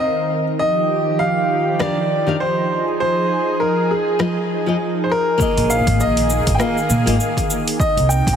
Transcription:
Already playing: analog synth pad D#3 C4 A#4
0.00 grand piano D#5
0.59 analog synth pad D#3 F3 D#4 G4, grand piano D#5
1.19 grand piano F5
1.79 nylon-string guitar D#3 D4 G4 F5, grand piano D5, cross-stick
2.27 nylon-string guitar D#3 D4 G4 F5
2.40 grand piano C5
2.70 analog synth pad F3 G#4
3.00 grand piano C5
3.60 grand piano A#4
3.91 grand piano G#4
4.19 nylon-string guitar F3 F4 G#4 D#5, cross-stick
4.66 nylon-string guitar F3 F4 G#4 D#5
5.04 grand piano C5
5.12 grand piano A#4
5.38 analog synth pad D#3 A#3 G#4, nylon-string guitar A#3 F4 G#4, kick, shaker
5.42 nylon-string guitar D#5
5.57 upright bass A#1, open hi-hat, shaker
5.70 grand piano F5, shaker
5.87 upright bass G#1, kick, open hi-hat, shaker
6.00 upright bass A#1, grand piano D#5, shaker
6.17 open hi-hat, shaker
6.30 shaker
6.47 upright bass G#1, kick, open hi-hat, shaker
6.55 nylon-string guitar A#3, grand piano G5
6.59 nylon-string guitar F4 G#4 D#5, grand piano F5, cross-stick, shaker
6.78 shaker
6.89 upright bass A#2, shaker
7.06 upright bass G#1, nylon-string guitar A#3 F4 G#4 D#5, open hi-hat, shaker
7.20 shaker
7.37 kick, open hi-hat, shaker
7.50 shaker
7.68 open hi-hat, shaker
7.80 analog synth pad C3 A#3 D#4, grand piano D#5, kick, shaker
7.97 upright bass C2, open hi-hat, shaker
8.09 grand piano G5, shaker
8.27 upright bass A#1, kick, open hi-hat, shaker

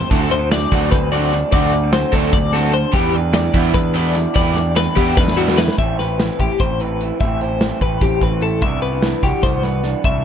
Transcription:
Already playing: clean electric guitar E3 C4 C5
0.10 picked electric bass D2, clean electric guitar D3 E4 A4, overdriven electric guitar D3 A3 C4 F#4, kick, closed hi-hat
0.20 clean electric guitar F#4
0.29 picked electric bass D2, clean electric guitar A3 C5, muted overdriven electric guitar stroke, closed hi-hat
0.39 clean electric guitar C4
0.49 clean electric guitar F#3 D5, muted overdriven electric guitar stroke, snare, closed hi-hat
0.72 picked electric bass D2, overdriven electric guitar D3 A3 C4 F#4, clean electric guitar B3, kick, snare, closed hi-hat
0.82 clean electric guitar D4
0.91 picked electric bass D2, clean electric guitar C4 B4, muted overdriven electric guitar stroke, kick, snare, closed hi-hat
1.12 clean electric guitar A2 D5, overdriven electric guitar D3 A3 C4 F#4, snare, closed hi-hat
1.32 clean electric guitar D4, muted overdriven electric guitar stroke, snare, closed hi-hat
1.52 picked electric bass D2, overdriven electric guitar D3 A3 C4 F#4, clean electric guitar D3 F#4 D5, kick, closed hi-hat
1.72 clean electric guitar A3, muted overdriven electric guitar stroke, closed hi-hat
1.84 clean electric guitar C4
1.93 clean electric guitar F#3 C5, muted overdriven electric guitar stroke, snare, closed hi-hat
2.12 picked electric bass D2, overdriven electric guitar D3 A3 C4 F#4, clean electric guitar D4 A4, kick, snare, closed hi-hat
2.31 picked electric bass D2, clean electric guitar B2 D5, muted overdriven electric guitar stroke, kick, closed hi-hat
2.53 clean electric guitar C3 A4, overdriven electric guitar D3 A3 C4 F#4, snare, closed hi-hat
2.73 clean electric guitar D3 C5, muted overdriven electric guitar stroke, closed hi-hat
2.93 clean electric guitar E2 G4, picked electric bass E2, overdriven electric guitar E3 G3 B3 E4, kick, closed hi-hat
3.13 picked electric bass E2, clean electric guitar D4 B4, muted overdriven electric guitar stroke, closed hi-hat
3.33 clean electric guitar E3 D5, muted overdriven electric guitar stroke, snare, closed hi-hat
3.54 picked electric bass E2, overdriven electric guitar E3 G3 B3 E4, clean electric guitar E4, kick, closed hi-hat
3.74 picked electric bass E2, clean electric guitar D4 B4, muted overdriven electric guitar stroke, kick, snare, closed hi-hat
3.93 clean electric guitar B2 D5, overdriven electric guitar E3 G3 B3 E4, closed hi-hat
4.15 clean electric guitar E4, muted overdriven electric guitar stroke, snare, closed hi-hat
4.34 clean electric guitar E2 G4 D5, picked electric bass E2, overdriven electric guitar E3 G3 B3 E4, kick, closed hi-hat
4.55 clean electric guitar D4, muted overdriven electric guitar stroke, snare, closed hi-hat
4.76 clean electric guitar E3 B4, muted overdriven electric guitar stroke, snare, closed hi-hat
4.96 picked electric bass E2, overdriven electric guitar E3 G3 B3 E4, clean electric guitar E4 G4, kick, closed hi-hat
5.16 picked electric bass E2, clean electric guitar D4 B4, muted overdriven electric guitar stroke, kick, snare
5.28 snare
5.37 clean electric guitar B2 F#4, overdriven electric guitar E3 G3 B3 E4
5.48 snare
5.57 clean electric guitar E4 B4, muted overdriven electric guitar stroke, snare
5.68 snare
5.78 picked electric bass A1, clean electric guitar A2 C4 E4 G4 E5, kick, closed hi-hat
5.99 clean electric guitar E4 B4, snare, closed hi-hat
6.18 clean electric guitar E3, snare, closed hi-hat
6.39 picked electric bass A1, clean electric guitar E4 G4, kick, closed hi-hat
6.51 clean electric guitar G4
6.60 picked electric bass A1, clean electric guitar C4 C5, kick, closed hi-hat
6.80 clean electric guitar E3 B4, closed hi-hat
7.01 clean electric guitar E4, closed hi-hat
7.21 picked electric bass A1, clean electric guitar A2 C4 E4 G4 E5, kick, closed hi-hat
7.41 clean electric guitar E4 C5, closed hi-hat
7.61 clean electric guitar E3, snare, closed hi-hat
7.81 picked electric bass A1, clean electric guitar G4 B4, kick, closed hi-hat
8.01 picked electric bass A1, clean electric guitar C4 G4, kick, closed hi-hat
8.21 picked electric bass A1, clean electric guitar E3 B4, kick, closed hi-hat
8.42 clean electric guitar E4 A4, closed hi-hat
8.62 picked electric bass C2, clean electric guitar C3 B3 D4 E4 E5, kick, closed hi-hat
8.82 clean electric guitar B3 B4, closed hi-hat
8.92 clean electric guitar D4
9.02 clean electric guitar E3, snare, closed hi-hat
9.23 picked electric bass C2, clean electric guitar F#4 G4, kick, snare, closed hi-hat
9.43 picked electric bass C2, clean electric guitar A3 C5, kick, snare, closed hi-hat
9.53 clean electric guitar B3
9.62 clean electric guitar G2 B4, snare, closed hi-hat
9.84 clean electric guitar D4, snare, closed hi-hat
10.04 picked electric bass C2, clean electric guitar C3 D4 E4 E5, kick, closed hi-hat

